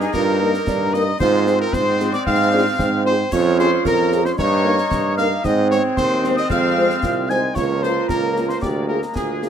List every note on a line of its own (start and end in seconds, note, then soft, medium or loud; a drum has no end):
0.00 1.16 A#3 loud
0.00 0.10 D#4 loud
0.00 1.16 D#4 loud
0.00 0.13 G#4 loud
0.00 0.07 G#4 loud
0.00 0.13 G#5 loud
0.00 snare medium
0.13 0.58 G2 loud
0.13 0.39 F4 loud
0.13 0.95 A#4 loud
0.13 0.90 A#4 loud
0.13 0.95 A#5 loud
0.13 concert bass drum medium
0.13 snare medium
0.41 0.51 A#3 medium
0.41 0.51 D#4 medium
0.41 0.53 D#4 loud
0.41 0.51 A#4 medium
0.54 snare medium
0.67 1.12 G2 loud
0.67 0.92 D4 loud
0.67 concert bass drum medium
0.67 snare medium
0.93 1.03 A#3 medium
0.93 1.06 D#4 medium
0.93 1.03 D#4 medium
0.93 1.03 A#4 medium
0.93 1.18 D#5 loud
0.93 1.20 D#5 loud
0.93 1.19 D#6 loud
0.93 snare medium
1.20 1.65 G#2 loud
1.20 3.15 G#3 loud
1.20 3.15 C4 loud
1.20 1.94 F4 loud
1.20 1.57 C5 loud
1.20 1.57 C6 loud
1.20 concert bass drum medium
1.20 snare medium
1.20 crash soft
1.47 1.57 C4 medium
1.47 1.57 F4 medium
1.47 1.57 G#4 medium
1.47 snare medium
1.60 1.73 A#4 loud
1.60 1.75 A#4 loud
1.60 1.66 A#5 loud
1.73 2.14 G#2 loud
1.73 2.13 C5 loud
1.73 2.11 C6 loud
1.73 concert bass drum medium
1.73 snare medium
2.00 2.09 C4 medium
2.00 2.09 F4 medium
2.00 2.09 G#4 medium
2.00 snare medium
2.13 2.26 D5 loud
2.13 2.19 D6 loud
2.13 snare medium
2.26 2.71 G#2 loud
2.26 2.51 C4 loud
2.26 3.02 F5 loud
2.26 3.02 F6 loud
2.26 concert bass drum medium
2.26 snare medium
2.52 2.63 C4 medium
2.52 2.64 D4 loud
2.52 2.63 F4 medium
2.52 2.63 G#4 medium
2.79 3.24 G#2 loud
2.79 3.29 C4 loud
2.79 concert bass drum medium
2.79 snare medium
3.05 3.15 C4 medium
3.05 3.15 F4 medium
3.05 3.15 G#4 medium
3.05 3.34 C5 loud
3.05 3.31 C5 loud
3.05 3.12 C6 loud
3.32 3.77 F2 loud
3.32 4.34 G#3 loud
3.32 4.34 C#4 loud
3.32 4.34 F4 loud
3.32 3.57 C#5 loud
3.32 3.59 C#5 loud
3.32 3.39 C#6 loud
3.32 concert bass drum medium
3.32 snare medium
3.32 crash medium
3.59 3.68 C#4 medium
3.59 3.68 F4 loud
3.59 3.68 G#4 medium
3.59 3.83 C5 loud
3.59 3.71 C5 loud
3.59 3.84 C6 loud
3.59 snare medium
3.85 4.30 F2 loud
3.85 4.22 A#4 loud
3.85 4.23 A#4 loud
3.85 4.27 A#5 loud
3.85 concert bass drum medium
3.85 snare medium
4.12 4.21 C#4 medium
4.12 4.21 F4 medium
4.12 4.21 G#4 medium
4.12 snare medium
4.25 4.31 C5 loud
4.25 4.32 C5 loud
4.25 4.38 C6 loud
4.25 snare medium
4.38 4.83 G2 loud
4.38 5.41 A#3 loud
4.38 5.40 D#4 loud
4.38 5.14 C#5 loud
4.38 5.14 C#6 loud
4.38 concert bass drum medium
4.38 snare medium
4.65 4.74 A#3 medium
4.65 4.74 D#4 loud
4.65 4.74 A#4 medium
4.78 snare medium
4.91 5.36 G2 loud
4.91 concert bass drum medium
4.91 snare medium
5.17 5.28 A#3 medium
5.17 5.27 D#4 medium
5.17 5.28 A#4 medium
5.17 5.42 F5 loud
5.17 5.46 F5 loud
5.17 5.24 F6 loud
5.17 snare medium
5.44 5.89 G#2 loud
5.44 7.56 G#3 loud
5.44 7.57 C4 loud
5.44 6.52 C4 loud
5.44 5.71 D#5 medium
5.44 5.70 D#5 loud
5.44 5.50 D#6 medium
5.44 concert bass drum medium
5.44 snare medium
5.44 crash soft
5.70 5.81 G#3 medium
5.70 5.81 C4 medium
5.70 5.81 C5 medium
5.70 5.97 C#5 loud
5.70 5.83 C#5 loud
5.70 5.77 C#6 loud
5.70 snare medium
5.96 6.42 D#2 loud
5.96 6.34 C5 loud
5.96 6.38 C5 loud
5.96 6.34 C6 loud
5.96 concert bass drum medium
5.96 snare medium
6.24 6.34 G#3 medium
6.24 6.34 C4 medium
6.24 6.34 C5 medium
6.24 snare medium
6.36 6.43 D#5 loud
6.36 6.50 D#5 loud
6.36 6.49 D#6 loud
6.36 snare medium
6.50 6.94 F2 loud
6.50 7.03 G#3 loud
6.50 7.26 F5 loud
6.50 7.13 F5 loud
6.50 7.31 F6 loud
6.50 concert bass drum medium
6.50 snare medium
6.77 6.87 G#3 medium
6.77 6.86 F4 medium
6.77 6.86 C5 medium
6.90 snare medium
7.03 7.48 C2 medium
7.03 7.28 F4 loud
7.03 concert bass drum medium
7.03 snare medium
7.29 7.39 G#3 medium
7.29 7.57 D#4 loud
7.29 7.39 F4 medium
7.29 7.39 C5 medium
7.29 7.57 G#5 loud
7.29 7.42 G#5 loud
7.29 7.54 G#6 loud
7.29 snare medium
7.54 8.01 C#2 loud
7.54 8.58 F3 loud
7.54 9.49 A#3 loud
7.54 8.62 F4 loud
7.54 7.85 C#5 loud
7.54 7.69 C#5 medium
7.54 7.80 C#6 loud
7.54 concert bass drum medium
7.54 snare medium
7.54 crash soft
7.82 7.92 A#3 medium
7.82 7.92 F4 medium
7.82 7.92 A#4 medium
7.82 8.08 C5 loud
7.82 8.09 C5 loud
7.82 8.10 C6 loud
7.82 snare medium
8.09 8.54 C#2 loud
8.09 8.52 A#4 loud
8.09 8.49 A#4 loud
8.09 8.47 A#5 medium
8.09 concert bass drum medium
8.09 snare medium
8.35 8.45 A#3 medium
8.35 8.45 F4 medium
8.35 8.45 A#4 medium
8.35 snare medium
8.48 8.63 C5 medium
8.48 8.64 C5 loud
8.48 8.61 C6 loud
8.48 snare medium
8.61 9.03 D2 loud
8.61 9.49 G#3 medium
8.61 8.95 G4 loud
8.61 8.89 D5 medium
8.61 8.88 D5 loud
8.61 8.68 D6 medium
8.61 concert bass drum medium
8.61 snare medium
8.88 8.98 A#3 medium
8.88 8.98 F4 medium
8.88 8.98 G#4 medium
8.88 9.01 A#4 loud
8.88 9.01 A#4 medium
8.88 9.17 A#5 medium
9.02 snare medium
9.15 9.49 D2 medium
9.15 9.49 F4 medium
9.15 9.49 G#4 loud
9.15 9.49 G#5 medium
9.15 concert bass drum medium
9.15 snare medium
9.42 9.49 A#3 medium
9.42 9.49 F4 medium
9.42 9.49 G#4 medium
9.42 snare medium